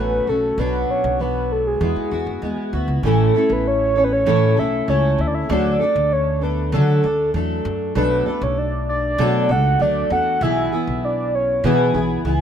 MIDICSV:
0, 0, Header, 1, 4, 480
1, 0, Start_track
1, 0, Key_signature, 3, "major"
1, 0, Tempo, 614125
1, 457, Time_signature, 4, 2, 24, 8
1, 9700, End_track
2, 0, Start_track
2, 0, Title_t, "Soft synth lead"
2, 0, Program_c, 0, 80
2, 0, Note_on_c, 0, 71, 89
2, 226, Note_on_c, 0, 69, 81
2, 237, Note_off_c, 0, 71, 0
2, 465, Note_on_c, 0, 71, 93
2, 476, Note_off_c, 0, 69, 0
2, 708, Note_on_c, 0, 73, 90
2, 720, Note_off_c, 0, 71, 0
2, 947, Note_on_c, 0, 71, 90
2, 959, Note_off_c, 0, 73, 0
2, 1188, Note_on_c, 0, 69, 81
2, 1199, Note_off_c, 0, 71, 0
2, 1299, Note_off_c, 0, 69, 0
2, 1304, Note_on_c, 0, 68, 86
2, 2110, Note_off_c, 0, 68, 0
2, 2393, Note_on_c, 0, 69, 97
2, 2755, Note_on_c, 0, 71, 98
2, 2766, Note_off_c, 0, 69, 0
2, 2872, Note_on_c, 0, 73, 106
2, 2884, Note_off_c, 0, 71, 0
2, 3105, Note_off_c, 0, 73, 0
2, 3111, Note_on_c, 0, 73, 110
2, 3160, Note_on_c, 0, 71, 92
2, 3171, Note_off_c, 0, 73, 0
2, 3226, Note_on_c, 0, 73, 105
2, 3238, Note_off_c, 0, 71, 0
2, 3588, Note_on_c, 0, 76, 111
2, 3600, Note_off_c, 0, 73, 0
2, 3826, Note_on_c, 0, 73, 104
2, 3838, Note_off_c, 0, 76, 0
2, 4071, Note_on_c, 0, 76, 109
2, 4082, Note_off_c, 0, 73, 0
2, 4121, Note_on_c, 0, 74, 91
2, 4133, Note_off_c, 0, 76, 0
2, 4177, Note_on_c, 0, 76, 106
2, 4189, Note_off_c, 0, 74, 0
2, 4307, Note_on_c, 0, 74, 108
2, 4318, Note_off_c, 0, 76, 0
2, 4787, Note_on_c, 0, 73, 99
2, 4799, Note_off_c, 0, 74, 0
2, 5023, Note_on_c, 0, 71, 88
2, 5035, Note_off_c, 0, 73, 0
2, 5261, Note_off_c, 0, 71, 0
2, 5265, Note_on_c, 0, 69, 82
2, 5710, Note_off_c, 0, 69, 0
2, 6228, Note_on_c, 0, 71, 102
2, 6590, Note_on_c, 0, 73, 94
2, 6602, Note_off_c, 0, 71, 0
2, 6707, Note_on_c, 0, 74, 105
2, 6719, Note_off_c, 0, 73, 0
2, 6942, Note_off_c, 0, 74, 0
2, 6951, Note_on_c, 0, 74, 100
2, 7435, Note_on_c, 0, 78, 113
2, 7447, Note_off_c, 0, 74, 0
2, 7671, Note_on_c, 0, 74, 107
2, 7683, Note_off_c, 0, 78, 0
2, 7904, Note_off_c, 0, 74, 0
2, 7911, Note_on_c, 0, 78, 106
2, 8148, Note_on_c, 0, 76, 107
2, 8160, Note_off_c, 0, 78, 0
2, 8633, Note_on_c, 0, 74, 94
2, 8645, Note_off_c, 0, 76, 0
2, 8870, Note_on_c, 0, 73, 93
2, 8882, Note_off_c, 0, 74, 0
2, 9103, Note_off_c, 0, 73, 0
2, 9107, Note_on_c, 0, 71, 80
2, 9550, Note_off_c, 0, 71, 0
2, 9700, End_track
3, 0, Start_track
3, 0, Title_t, "Steel-string acoustic guitar"
3, 0, Program_c, 1, 25
3, 0, Note_on_c, 1, 54, 60
3, 0, Note_on_c, 1, 57, 56
3, 0, Note_on_c, 1, 61, 58
3, 0, Note_on_c, 1, 66, 64
3, 208, Note_off_c, 1, 66, 0
3, 214, Note_off_c, 1, 61, 0
3, 216, Note_off_c, 1, 54, 0
3, 217, Note_on_c, 1, 66, 53
3, 219, Note_off_c, 1, 57, 0
3, 223, Note_on_c, 1, 61, 50
3, 228, Note_on_c, 1, 57, 49
3, 233, Note_on_c, 1, 54, 45
3, 449, Note_off_c, 1, 54, 0
3, 456, Note_on_c, 1, 47, 70
3, 457, Note_off_c, 1, 57, 0
3, 457, Note_off_c, 1, 66, 0
3, 459, Note_on_c, 1, 54, 74
3, 460, Note_off_c, 1, 61, 0
3, 460, Note_on_c, 1, 59, 75
3, 463, Note_on_c, 1, 62, 81
3, 466, Note_on_c, 1, 66, 77
3, 923, Note_off_c, 1, 54, 0
3, 929, Note_off_c, 1, 59, 0
3, 932, Note_on_c, 1, 54, 58
3, 933, Note_off_c, 1, 62, 0
3, 937, Note_off_c, 1, 47, 0
3, 937, Note_off_c, 1, 66, 0
3, 938, Note_on_c, 1, 59, 58
3, 942, Note_on_c, 1, 62, 58
3, 947, Note_on_c, 1, 66, 59
3, 1408, Note_off_c, 1, 59, 0
3, 1410, Note_off_c, 1, 54, 0
3, 1413, Note_on_c, 1, 56, 54
3, 1417, Note_on_c, 1, 59, 60
3, 1419, Note_off_c, 1, 62, 0
3, 1419, Note_off_c, 1, 66, 0
3, 1422, Note_on_c, 1, 64, 62
3, 1428, Note_on_c, 1, 66, 67
3, 1643, Note_off_c, 1, 66, 0
3, 1651, Note_off_c, 1, 64, 0
3, 1653, Note_on_c, 1, 66, 59
3, 1656, Note_off_c, 1, 56, 0
3, 1658, Note_off_c, 1, 59, 0
3, 1661, Note_on_c, 1, 64, 46
3, 1670, Note_on_c, 1, 59, 44
3, 1890, Note_off_c, 1, 59, 0
3, 1893, Note_off_c, 1, 64, 0
3, 1894, Note_on_c, 1, 56, 62
3, 1896, Note_off_c, 1, 66, 0
3, 1899, Note_on_c, 1, 59, 65
3, 1902, Note_on_c, 1, 64, 70
3, 1908, Note_on_c, 1, 66, 64
3, 2124, Note_off_c, 1, 66, 0
3, 2133, Note_off_c, 1, 64, 0
3, 2133, Note_on_c, 1, 66, 57
3, 2136, Note_off_c, 1, 56, 0
3, 2139, Note_off_c, 1, 59, 0
3, 2143, Note_on_c, 1, 64, 59
3, 2148, Note_on_c, 1, 59, 52
3, 2374, Note_off_c, 1, 64, 0
3, 2376, Note_off_c, 1, 66, 0
3, 2377, Note_on_c, 1, 45, 75
3, 2380, Note_off_c, 1, 59, 0
3, 2380, Note_on_c, 1, 52, 81
3, 2380, Note_on_c, 1, 57, 80
3, 2383, Note_on_c, 1, 61, 82
3, 2384, Note_on_c, 1, 64, 79
3, 2387, Note_on_c, 1, 69, 79
3, 2607, Note_off_c, 1, 69, 0
3, 2613, Note_off_c, 1, 64, 0
3, 2616, Note_off_c, 1, 61, 0
3, 2616, Note_on_c, 1, 69, 64
3, 2618, Note_off_c, 1, 45, 0
3, 2619, Note_off_c, 1, 52, 0
3, 2619, Note_off_c, 1, 57, 0
3, 2623, Note_on_c, 1, 64, 57
3, 2625, Note_on_c, 1, 61, 52
3, 2631, Note_on_c, 1, 57, 46
3, 3088, Note_off_c, 1, 64, 0
3, 3088, Note_off_c, 1, 69, 0
3, 3091, Note_on_c, 1, 69, 53
3, 3093, Note_off_c, 1, 61, 0
3, 3097, Note_on_c, 1, 64, 48
3, 3103, Note_on_c, 1, 61, 44
3, 3104, Note_off_c, 1, 57, 0
3, 3107, Note_on_c, 1, 57, 37
3, 3324, Note_off_c, 1, 57, 0
3, 3326, Note_off_c, 1, 61, 0
3, 3327, Note_off_c, 1, 64, 0
3, 3328, Note_on_c, 1, 45, 82
3, 3329, Note_off_c, 1, 69, 0
3, 3331, Note_on_c, 1, 52, 84
3, 3333, Note_on_c, 1, 57, 86
3, 3336, Note_on_c, 1, 61, 88
3, 3336, Note_on_c, 1, 64, 91
3, 3339, Note_on_c, 1, 69, 88
3, 3558, Note_off_c, 1, 69, 0
3, 3564, Note_off_c, 1, 64, 0
3, 3567, Note_on_c, 1, 69, 57
3, 3569, Note_off_c, 1, 61, 0
3, 3572, Note_off_c, 1, 57, 0
3, 3573, Note_off_c, 1, 45, 0
3, 3574, Note_on_c, 1, 64, 54
3, 3575, Note_off_c, 1, 52, 0
3, 3578, Note_on_c, 1, 61, 47
3, 3582, Note_on_c, 1, 57, 47
3, 3800, Note_off_c, 1, 57, 0
3, 3806, Note_off_c, 1, 61, 0
3, 3809, Note_off_c, 1, 64, 0
3, 3809, Note_on_c, 1, 57, 57
3, 3813, Note_off_c, 1, 69, 0
3, 3816, Note_on_c, 1, 61, 68
3, 3819, Note_on_c, 1, 64, 65
3, 3824, Note_on_c, 1, 69, 68
3, 4292, Note_on_c, 1, 50, 78
3, 4293, Note_off_c, 1, 57, 0
3, 4296, Note_off_c, 1, 61, 0
3, 4296, Note_on_c, 1, 54, 85
3, 4298, Note_off_c, 1, 64, 0
3, 4299, Note_on_c, 1, 57, 80
3, 4302, Note_off_c, 1, 69, 0
3, 4302, Note_on_c, 1, 62, 82
3, 4305, Note_on_c, 1, 69, 91
3, 4522, Note_off_c, 1, 69, 0
3, 4532, Note_off_c, 1, 62, 0
3, 4532, Note_on_c, 1, 69, 57
3, 4535, Note_off_c, 1, 50, 0
3, 4537, Note_off_c, 1, 54, 0
3, 4539, Note_off_c, 1, 57, 0
3, 4541, Note_on_c, 1, 62, 60
3, 4548, Note_on_c, 1, 57, 47
3, 5009, Note_off_c, 1, 69, 0
3, 5012, Note_on_c, 1, 69, 50
3, 5017, Note_off_c, 1, 62, 0
3, 5020, Note_on_c, 1, 62, 48
3, 5025, Note_off_c, 1, 57, 0
3, 5028, Note_on_c, 1, 57, 42
3, 5252, Note_off_c, 1, 57, 0
3, 5254, Note_off_c, 1, 62, 0
3, 5254, Note_on_c, 1, 50, 90
3, 5255, Note_off_c, 1, 69, 0
3, 5259, Note_on_c, 1, 54, 88
3, 5261, Note_on_c, 1, 57, 79
3, 5263, Note_on_c, 1, 62, 92
3, 5267, Note_on_c, 1, 69, 93
3, 5484, Note_off_c, 1, 69, 0
3, 5492, Note_off_c, 1, 62, 0
3, 5493, Note_on_c, 1, 69, 54
3, 5496, Note_off_c, 1, 50, 0
3, 5498, Note_off_c, 1, 54, 0
3, 5498, Note_off_c, 1, 57, 0
3, 5502, Note_on_c, 1, 62, 55
3, 5507, Note_on_c, 1, 57, 45
3, 5732, Note_off_c, 1, 57, 0
3, 5735, Note_off_c, 1, 69, 0
3, 5737, Note_on_c, 1, 54, 60
3, 5738, Note_off_c, 1, 62, 0
3, 5741, Note_on_c, 1, 57, 71
3, 5747, Note_on_c, 1, 62, 67
3, 5752, Note_on_c, 1, 69, 65
3, 6215, Note_off_c, 1, 54, 0
3, 6215, Note_on_c, 1, 47, 73
3, 6217, Note_off_c, 1, 57, 0
3, 6218, Note_on_c, 1, 54, 83
3, 6220, Note_on_c, 1, 57, 80
3, 6221, Note_off_c, 1, 62, 0
3, 6222, Note_off_c, 1, 69, 0
3, 6224, Note_on_c, 1, 62, 97
3, 6225, Note_on_c, 1, 69, 99
3, 6447, Note_off_c, 1, 69, 0
3, 6456, Note_off_c, 1, 47, 0
3, 6456, Note_on_c, 1, 69, 67
3, 6457, Note_off_c, 1, 62, 0
3, 6458, Note_off_c, 1, 54, 0
3, 6459, Note_off_c, 1, 57, 0
3, 6466, Note_on_c, 1, 62, 53
3, 6471, Note_on_c, 1, 57, 51
3, 7174, Note_off_c, 1, 57, 0
3, 7177, Note_off_c, 1, 62, 0
3, 7177, Note_off_c, 1, 69, 0
3, 7178, Note_on_c, 1, 47, 80
3, 7181, Note_on_c, 1, 54, 85
3, 7183, Note_on_c, 1, 57, 96
3, 7187, Note_on_c, 1, 62, 92
3, 7188, Note_on_c, 1, 69, 93
3, 7407, Note_off_c, 1, 69, 0
3, 7413, Note_off_c, 1, 62, 0
3, 7416, Note_on_c, 1, 69, 66
3, 7417, Note_off_c, 1, 47, 0
3, 7419, Note_off_c, 1, 54, 0
3, 7420, Note_off_c, 1, 57, 0
3, 7423, Note_on_c, 1, 62, 55
3, 7430, Note_on_c, 1, 57, 51
3, 7654, Note_off_c, 1, 57, 0
3, 7657, Note_off_c, 1, 69, 0
3, 7659, Note_on_c, 1, 54, 58
3, 7660, Note_off_c, 1, 62, 0
3, 7663, Note_on_c, 1, 57, 63
3, 7670, Note_on_c, 1, 62, 69
3, 7672, Note_on_c, 1, 69, 75
3, 7891, Note_off_c, 1, 69, 0
3, 7898, Note_off_c, 1, 54, 0
3, 7899, Note_off_c, 1, 62, 0
3, 7900, Note_off_c, 1, 57, 0
3, 7901, Note_on_c, 1, 69, 60
3, 7909, Note_on_c, 1, 62, 52
3, 7915, Note_on_c, 1, 57, 44
3, 8139, Note_off_c, 1, 69, 0
3, 8142, Note_on_c, 1, 47, 71
3, 8143, Note_off_c, 1, 57, 0
3, 8143, Note_off_c, 1, 62, 0
3, 8145, Note_on_c, 1, 52, 79
3, 8146, Note_on_c, 1, 59, 81
3, 8149, Note_on_c, 1, 64, 90
3, 8151, Note_on_c, 1, 68, 88
3, 8372, Note_off_c, 1, 68, 0
3, 8379, Note_off_c, 1, 47, 0
3, 8379, Note_off_c, 1, 64, 0
3, 8381, Note_off_c, 1, 52, 0
3, 8381, Note_off_c, 1, 59, 0
3, 8381, Note_on_c, 1, 68, 62
3, 8389, Note_on_c, 1, 64, 58
3, 8395, Note_on_c, 1, 59, 48
3, 9092, Note_off_c, 1, 59, 0
3, 9094, Note_on_c, 1, 47, 83
3, 9095, Note_off_c, 1, 68, 0
3, 9099, Note_off_c, 1, 64, 0
3, 9099, Note_on_c, 1, 52, 89
3, 9101, Note_on_c, 1, 59, 86
3, 9103, Note_on_c, 1, 64, 93
3, 9104, Note_on_c, 1, 68, 85
3, 9322, Note_off_c, 1, 68, 0
3, 9332, Note_off_c, 1, 64, 0
3, 9332, Note_on_c, 1, 68, 59
3, 9335, Note_off_c, 1, 47, 0
3, 9337, Note_off_c, 1, 52, 0
3, 9339, Note_off_c, 1, 59, 0
3, 9341, Note_on_c, 1, 64, 53
3, 9347, Note_on_c, 1, 59, 42
3, 9572, Note_off_c, 1, 59, 0
3, 9574, Note_off_c, 1, 68, 0
3, 9574, Note_on_c, 1, 52, 62
3, 9576, Note_off_c, 1, 64, 0
3, 9581, Note_on_c, 1, 59, 62
3, 9585, Note_on_c, 1, 64, 65
3, 9590, Note_on_c, 1, 68, 64
3, 9700, Note_off_c, 1, 52, 0
3, 9700, Note_off_c, 1, 59, 0
3, 9700, Note_off_c, 1, 64, 0
3, 9700, Note_off_c, 1, 68, 0
3, 9700, End_track
4, 0, Start_track
4, 0, Title_t, "Upright bass"
4, 0, Program_c, 2, 32
4, 0, Note_on_c, 2, 33, 98
4, 169, Note_off_c, 2, 33, 0
4, 213, Note_on_c, 2, 35, 81
4, 411, Note_off_c, 2, 35, 0
4, 451, Note_on_c, 2, 35, 99
4, 650, Note_off_c, 2, 35, 0
4, 813, Note_on_c, 2, 35, 99
4, 1386, Note_off_c, 2, 35, 0
4, 1412, Note_on_c, 2, 40, 109
4, 1513, Note_off_c, 2, 40, 0
4, 1534, Note_on_c, 2, 52, 82
4, 1634, Note_off_c, 2, 52, 0
4, 1652, Note_on_c, 2, 40, 86
4, 1753, Note_off_c, 2, 40, 0
4, 1771, Note_on_c, 2, 42, 84
4, 1872, Note_off_c, 2, 42, 0
4, 1891, Note_on_c, 2, 40, 98
4, 1992, Note_off_c, 2, 40, 0
4, 2132, Note_on_c, 2, 38, 92
4, 2233, Note_off_c, 2, 38, 0
4, 2249, Note_on_c, 2, 37, 85
4, 2351, Note_off_c, 2, 37, 0
4, 2370, Note_on_c, 2, 33, 106
4, 2570, Note_off_c, 2, 33, 0
4, 2732, Note_on_c, 2, 33, 96
4, 3305, Note_off_c, 2, 33, 0
4, 3333, Note_on_c, 2, 45, 105
4, 3532, Note_off_c, 2, 45, 0
4, 3572, Note_on_c, 2, 35, 80
4, 3771, Note_off_c, 2, 35, 0
4, 3814, Note_on_c, 2, 37, 97
4, 4012, Note_off_c, 2, 37, 0
4, 4052, Note_on_c, 2, 38, 91
4, 4252, Note_off_c, 2, 38, 0
4, 4295, Note_on_c, 2, 38, 119
4, 4493, Note_off_c, 2, 38, 0
4, 4655, Note_on_c, 2, 38, 97
4, 5255, Note_on_c, 2, 50, 102
4, 5266, Note_off_c, 2, 38, 0
4, 5453, Note_off_c, 2, 50, 0
4, 5500, Note_on_c, 2, 38, 86
4, 5696, Note_off_c, 2, 38, 0
4, 5737, Note_on_c, 2, 40, 95
4, 5934, Note_off_c, 2, 40, 0
4, 5979, Note_on_c, 2, 42, 101
4, 6175, Note_off_c, 2, 42, 0
4, 6216, Note_on_c, 2, 35, 107
4, 6413, Note_off_c, 2, 35, 0
4, 6577, Note_on_c, 2, 35, 101
4, 7147, Note_off_c, 2, 35, 0
4, 7178, Note_on_c, 2, 47, 117
4, 7418, Note_on_c, 2, 37, 86
4, 7430, Note_off_c, 2, 47, 0
4, 7614, Note_off_c, 2, 37, 0
4, 7655, Note_on_c, 2, 38, 90
4, 7853, Note_off_c, 2, 38, 0
4, 7897, Note_on_c, 2, 40, 101
4, 8093, Note_off_c, 2, 40, 0
4, 8136, Note_on_c, 2, 35, 111
4, 8333, Note_off_c, 2, 35, 0
4, 8498, Note_on_c, 2, 35, 94
4, 9067, Note_off_c, 2, 35, 0
4, 9096, Note_on_c, 2, 47, 109
4, 9293, Note_off_c, 2, 47, 0
4, 9336, Note_on_c, 2, 35, 86
4, 9533, Note_off_c, 2, 35, 0
4, 9573, Note_on_c, 2, 37, 98
4, 9700, Note_off_c, 2, 37, 0
4, 9700, End_track
0, 0, End_of_file